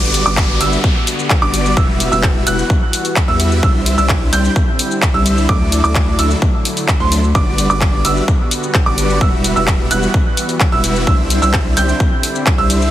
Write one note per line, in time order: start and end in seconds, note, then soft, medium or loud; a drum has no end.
0.00 0.23 G1 medium
0.00 1.75 D3 medium
0.00 0.23 G3 medium
0.00 3.59 G3 medium
0.00 3.59 B3 medium
0.00 0.23 D4 medium
0.00 0.23 F#4 medium
0.00 1.75 F#4 medium
0.00 0.23 B4 medium
0.00 0.23 D5 loud
0.00 0.23 D6 loud
0.00 downlifter medium
0.14 open hi-hat loud
0.14 shaker medium
0.26 0.58 G1 loud
0.26 0.58 G3 loud
0.26 0.58 D4 medium
0.26 0.58 F#4 medium
0.26 0.58 B4 medium
0.26 0.58 D5 loud
0.26 0.58 D6 loud
0.26 shaker soft
0.37 kick loud
0.37 clap loud
0.37 shaker soft
0.61 0.77 G1 medium
0.61 0.79 G3 medium
0.61 0.79 D4 medium
0.61 0.79 F#4 medium
0.61 0.79 B4 medium
0.61 0.79 E5 loud
0.61 0.79 E6 medium
0.61 open hi-hat loud
0.61 shaker medium
0.73 shaker soft
0.84 kick loud
0.84 shaker soft
1.07 open hi-hat loud
1.07 shaker medium
1.19 shaker soft
1.30 kick loud
1.30 clap loud
1.30 shaker soft
1.42 1.75 G1 loud
1.42 1.74 G3 loud
1.42 1.74 D4 medium
1.42 1.74 F#4 medium
1.42 1.74 B4 medium
1.42 1.74 D5 loud
1.42 1.74 D6 loud
1.54 open hi-hat loud
1.54 shaker medium
1.66 shaker soft
1.77 2.09 E1 loud
1.77 3.61 E3 medium
1.77 2.09 G3 medium
1.77 2.09 E4 medium
1.77 3.61 F#4 medium
1.77 2.09 F#4 medium
1.77 2.09 B4 medium
1.77 2.09 E5 loud
1.77 2.09 E6 loud
1.77 kick loud
1.77 shaker soft
2.00 open hi-hat loud
2.00 shaker medium
2.12 2.44 E1 medium
2.12 2.44 G3 loud
2.12 2.44 E4 medium
2.12 2.44 F#4 medium
2.12 2.44 B4 medium
2.12 2.44 E5 loud
2.12 2.44 E6 loud
2.12 shaker soft
2.23 kick loud
2.23 clap loud
2.23 shaker soft
2.47 2.63 E1 medium
2.47 2.65 G3 medium
2.47 2.65 E4 medium
2.47 2.65 F#4 medium
2.47 2.65 B4 medium
2.47 2.65 F#5 loud
2.47 2.65 F#6 medium
2.47 open hi-hat loud
2.47 shaker medium
2.59 shaker soft
2.70 kick loud
2.70 shaker soft
2.93 open hi-hat loud
2.93 shaker medium
3.05 open hi-hat medium
3.05 shaker soft
3.16 kick loud
3.16 clap loud
3.16 shaker soft
3.28 3.61 E2 loud
3.28 3.60 G3 loud
3.28 3.60 E4 medium
3.28 3.60 F#4 medium
3.28 3.60 B4 medium
3.28 3.60 E5 loud
3.28 3.60 E6 loud
3.40 open hi-hat loud
3.40 shaker medium
3.52 shaker soft
3.63 3.95 C2 loud
3.63 9.17 D3 medium
3.63 5.47 G3 medium
3.63 3.95 G3 medium
3.63 5.47 C4 medium
3.63 3.95 D4 medium
3.63 3.95 E4 medium
3.63 7.31 E4 medium
3.63 3.95 C5 medium
3.63 3.95 E5 medium
3.63 3.95 E6 loud
3.63 kick loud
3.63 shaker soft
3.86 open hi-hat loud
3.86 shaker medium
3.98 4.30 C2 loud
3.98 4.30 G3 loud
3.98 4.30 D4 medium
3.98 4.30 E4 medium
3.98 4.30 C5 medium
3.98 4.30 E5 loud
3.98 4.30 E6 loud
3.98 shaker soft
4.09 kick loud
4.09 clap loud
4.09 shaker soft
4.33 4.49 C2 medium
4.33 4.51 G3 medium
4.33 4.51 D4 medium
4.33 4.51 E4 medium
4.33 4.51 C5 medium
4.33 4.51 G5 medium
4.33 4.51 G6 loud
4.33 open hi-hat loud
4.33 shaker medium
4.45 shaker soft
4.56 kick loud
4.56 shaker soft
4.79 open hi-hat loud
4.79 shaker medium
4.91 shaker soft
5.02 kick loud
5.02 clap loud
5.02 shaker soft
5.14 5.47 C2 loud
5.14 5.46 G3 loud
5.14 5.46 D4 medium
5.14 5.46 E4 medium
5.14 5.46 C5 medium
5.14 5.46 E5 loud
5.14 5.46 E6 loud
5.26 open hi-hat loud
5.26 shaker medium
5.38 shaker soft
5.49 5.82 D2 loud
5.49 5.81 F#3 medium
5.49 7.33 F#3 medium
5.49 7.33 A3 medium
5.49 5.81 D4 medium
5.49 5.81 E4 medium
5.49 5.81 A4 medium
5.49 5.81 D5 loud
5.49 5.81 D6 loud
5.49 kick loud
5.49 shaker soft
5.72 open hi-hat loud
5.72 shaker medium
5.84 6.16 D2 loud
5.84 6.16 F#3 loud
5.84 6.16 D4 medium
5.84 6.16 E4 medium
5.84 6.16 A4 medium
5.84 6.16 D5 loud
5.84 6.16 D6 loud
5.84 shaker soft
5.95 kick loud
5.95 clap loud
5.95 shaker soft
6.19 6.35 D2 medium
6.19 6.37 F#3 medium
6.19 6.37 D4 medium
6.19 6.37 E4 medium
6.19 6.37 A4 medium
6.19 6.37 E5 loud
6.19 6.37 E6 loud
6.19 open hi-hat loud
6.19 shaker medium
6.31 shaker soft
6.42 kick loud
6.42 shaker soft
6.65 open hi-hat loud
6.65 shaker medium
6.77 open hi-hat medium
6.77 shaker soft
6.88 kick loud
6.88 clap loud
6.88 shaker soft
7.00 7.33 D2 loud
7.00 7.18 F#3 medium
7.00 7.18 D4 medium
7.00 7.18 E4 medium
7.00 7.18 A4 medium
7.00 7.18 C5 loud
7.00 7.18 C6 loud
7.12 open hi-hat loud
7.12 shaker medium
7.24 shaker soft
7.35 7.68 G1 loud
7.35 11.03 G3 medium
7.35 7.67 G3 medium
7.35 9.19 B3 medium
7.35 7.67 D4 medium
7.35 11.03 F#4 medium
7.35 7.67 F#4 medium
7.35 7.67 B4 medium
7.35 7.67 D5 medium
7.35 7.67 D6 loud
7.35 kick loud
7.35 shaker soft
7.58 open hi-hat loud
7.58 shaker medium
7.70 8.02 G1 loud
7.70 8.02 G3 medium
7.70 8.02 D4 medium
7.70 8.02 F#4 medium
7.70 8.02 B4 medium
7.70 8.02 D5 loud
7.70 8.02 D6 loud
7.70 shaker soft
7.81 kick loud
7.81 clap loud
7.81 shaker soft
8.05 8.21 G1 medium
8.05 8.23 G3 medium
8.05 8.23 D4 medium
8.05 8.23 F#4 medium
8.05 8.23 B4 medium
8.05 8.23 E5 medium
8.05 8.23 E6 loud
8.05 open hi-hat loud
8.05 shaker medium
8.17 shaker soft
8.28 kick loud
8.28 shaker soft
8.51 open hi-hat loud
8.51 shaker medium
8.63 shaker soft
8.74 kick loud
8.74 clap loud
8.74 shaker soft
8.86 9.19 G1 loud
8.86 9.18 G3 loud
8.86 9.18 D4 medium
8.86 9.18 F#4 medium
8.86 9.18 B4 medium
8.86 9.18 D5 loud
8.86 9.18 D6 loud
8.98 open hi-hat loud
8.98 shaker medium
9.10 shaker soft
9.21 9.54 E1 loud
9.21 11.05 E3 medium
9.21 9.53 G3 medium
9.21 11.05 B3 medium
9.21 9.53 E4 medium
9.21 9.53 F#4 medium
9.21 9.53 B4 medium
9.21 9.53 E5 medium
9.21 9.53 E6 loud
9.21 kick loud
9.21 shaker soft
9.44 open hi-hat loud
9.44 shaker medium
9.56 9.88 E1 medium
9.56 9.88 G3 loud
9.56 9.88 E4 medium
9.56 9.88 F#4 medium
9.56 9.88 B4 medium
9.56 9.88 E5 loud
9.56 9.88 E6 loud
9.56 shaker soft
9.67 kick loud
9.67 clap loud
9.67 shaker soft
9.91 10.07 E1 medium
9.91 10.09 G3 medium
9.91 10.09 E4 medium
9.91 10.09 F#4 medium
9.91 10.09 B4 medium
9.91 10.09 F#5 loud
9.91 10.09 F#6 medium
9.91 open hi-hat loud
9.91 shaker medium
10.03 shaker soft
10.14 kick loud
10.14 shaker soft
10.37 open hi-hat loud
10.37 shaker medium
10.49 open hi-hat medium
10.49 shaker soft
10.60 kick loud
10.60 clap loud
10.60 shaker soft
10.72 11.05 E1 loud
10.72 11.04 G3 loud
10.72 11.04 E4 medium
10.72 11.04 F#4 medium
10.72 11.04 B4 medium
10.72 11.04 E5 loud
10.72 11.04 E6 loud
10.84 open hi-hat loud
10.84 shaker medium
10.96 shaker soft
11.07 11.40 C2 loud
11.07 12.91 D3 medium
11.07 12.91 G3 medium
11.07 11.39 G3 medium
11.07 12.91 C4 medium
11.07 11.39 D4 medium
11.07 12.91 E4 medium
11.07 11.39 E4 medium
11.07 11.39 C5 medium
11.07 11.39 E5 loud
11.07 11.39 E6 loud
11.07 kick loud
11.07 shaker soft
11.30 open hi-hat loud
11.30 shaker medium
11.42 11.75 C2 medium
11.42 11.74 G3 medium
11.42 11.74 D4 medium
11.42 11.74 E4 medium
11.42 11.74 C5 medium
11.42 11.74 E5 loud
11.42 11.74 E6 loud
11.42 shaker soft
11.53 kick loud
11.53 clap loud
11.53 shaker soft
11.77 11.93 C2 medium
11.77 11.95 G3 medium
11.77 11.95 D4 medium
11.77 11.95 E4 medium
11.77 11.95 C5 medium
11.77 11.95 G5 loud
11.77 11.95 G6 loud
11.77 open hi-hat loud
11.77 shaker medium
11.89 shaker soft
12.00 kick loud
12.00 shaker soft
12.23 open hi-hat loud
12.23 shaker medium
12.35 shaker soft
12.46 kick loud
12.46 clap loud
12.46 shaker soft
12.58 12.91 C2 loud
12.58 12.90 G3 loud
12.58 12.90 D4 medium
12.58 12.90 E4 medium
12.58 12.90 C5 medium
12.58 12.90 E5 loud
12.58 12.90 E6 loud
12.70 open hi-hat loud
12.70 shaker medium
12.82 shaker soft